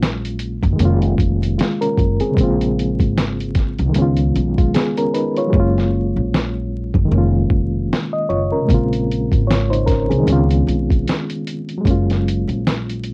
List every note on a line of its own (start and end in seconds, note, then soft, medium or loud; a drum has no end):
0.00 0.59 A#1 medium
0.00 0.73 F#3 medium
0.00 0.75 G#3 medium
0.00 0.77 A#3 medium
0.00 0.78 C#4 medium
0.00 0.80 F4 medium
0.00 snare loud
0.00 closed hi-hat medium
0.25 closed hi-hat medium
0.39 closed hi-hat medium
0.63 0.79 F#1 loud
0.63 kick medium
0.63 closed hi-hat soft
0.73 2.31 D#3 medium
0.73 1.55 G#3 medium
0.79 1.17 F1 loud
0.79 1.57 A#3 medium
0.79 1.58 C#4 medium
0.79 closed hi-hat medium
0.85 1.57 F4 medium
1.02 closed hi-hat soft
1.18 1.56 F1 medium
1.18 kick medium
1.18 closed hi-hat medium
1.43 closed hi-hat soft
1.58 1.80 G#3 medium
1.58 1.80 F4 medium
1.58 snare loud
1.58 closed hi-hat medium
1.81 2.19 C#4 medium
1.81 2.19 A#4 medium
1.81 closed hi-hat medium
1.98 2.20 F#1 medium
1.98 kick medium
1.98 closed hi-hat medium
2.20 2.39 C4 medium
2.20 2.58 G#4 medium
2.20 closed hi-hat soft
2.31 3.89 C#3 medium
2.31 3.91 G#3 medium
2.37 2.96 A#1 medium
2.37 3.92 A#3 medium
2.37 3.94 C4 medium
2.37 kick loud
2.37 closed hi-hat medium
2.44 3.95 F4 medium
2.61 closed hi-hat soft
2.79 closed hi-hat medium
3.00 3.75 G#1 medium
3.00 kick medium
3.00 closed hi-hat soft
3.18 snare loud
3.18 closed hi-hat medium
3.40 closed hi-hat medium
3.55 kick medium
3.55 snare soft
3.55 closed hi-hat medium
3.78 3.94 C2 medium
3.78 closed hi-hat soft
3.89 5.47 D#3 medium
3.89 4.32 G#3 medium
3.94 4.32 C#2 loud
3.94 4.34 B3 medium
3.94 closed hi-hat medium
3.98 4.36 C#4 medium
3.98 4.37 F4 medium
4.16 closed hi-hat soft
4.35 4.72 B1 medium
4.35 closed hi-hat medium
4.58 4.74 G#3 soft
4.58 4.73 F4 medium
4.58 kick medium
4.58 closed hi-hat soft
4.74 4.97 B3 medium
4.74 4.96 G#4 medium
4.74 snare loud
4.74 closed hi-hat medium
4.97 5.13 C#4 medium
4.97 5.13 A#4 medium
4.97 closed hi-hat medium
5.14 5.36 D#4 medium
5.14 5.36 B4 medium
5.14 closed hi-hat medium
5.36 5.58 F4 medium
5.36 5.75 C#5 medium
5.36 closed hi-hat soft
5.47 7.05 F#3 medium
5.47 7.07 G#3 medium
5.53 6.12 F#1 loud
5.53 7.08 A#3 medium
5.53 7.10 C#4 medium
5.53 kick loud
5.60 7.11 F4 medium
5.78 snare soft
6.16 6.91 A#1 medium
6.34 snare loud
6.94 7.10 F#1 medium
6.94 kick medium
7.05 8.63 D#3 medium
7.05 8.64 G#3 medium
7.11 7.48 F1 loud
7.11 8.66 A#3 medium
7.11 7.52 C#4 medium
7.18 7.53 F4 medium
7.50 7.87 F1 medium
7.50 kick medium
7.93 snare loud
8.13 8.29 D#5 medium
8.29 8.51 F#1 medium
8.29 8.52 F4 medium
8.29 8.51 C#5 medium
8.52 8.90 C#4 soft
8.52 8.90 A#4 medium
8.62 8.73 C3 medium
8.62 10.22 G#3 medium
8.68 9.28 A#1 medium
8.68 10.24 C#3 medium
8.68 10.23 A#3 medium
8.68 9.48 C4 medium
8.68 kick medium
8.68 closed hi-hat medium
8.74 9.47 F4 medium
8.93 closed hi-hat soft
9.12 closed hi-hat medium
9.32 10.07 G#1 medium
9.32 kick medium
9.32 closed hi-hat soft
9.47 9.70 F4 medium
9.47 9.69 C#5 medium
9.47 snare loud
9.47 closed hi-hat medium
9.70 9.87 D#4 medium
9.70 9.86 C5 medium
9.70 closed hi-hat medium
9.86 10.09 C#4 medium
9.86 10.09 A#4 medium
9.86 kick medium
9.86 snare soft
9.86 closed hi-hat medium
10.10 10.26 C2 medium
10.10 10.48 C4 soft
10.10 10.48 G#4 medium
10.10 closed hi-hat soft
10.20 11.78 D#3 medium
10.20 11.80 G#3 medium
10.26 10.64 C#2 loud
10.26 11.81 B3 medium
10.26 11.83 C#4 medium
10.26 closed hi-hat medium
10.33 11.85 F4 medium
10.51 closed hi-hat soft
10.67 11.04 B1 medium
10.67 closed hi-hat medium
10.91 kick medium
10.91 closed hi-hat soft
11.08 snare loud
11.08 closed hi-hat medium
11.30 closed hi-hat medium
11.47 closed hi-hat medium
11.69 closed hi-hat soft
11.78 13.14 F#3 medium
11.78 13.14 G#3 medium
11.84 12.44 F#1 medium
11.84 13.14 A#3 medium
11.84 13.14 C#4 medium
11.84 kick loud
11.84 closed hi-hat medium
11.91 13.14 F4 medium
12.10 snare soft
12.10 closed hi-hat soft
12.28 closed hi-hat medium
12.48 13.14 A#1 medium
12.48 closed hi-hat soft
12.67 snare loud
12.67 closed hi-hat medium
12.89 closed hi-hat medium
13.03 closed hi-hat medium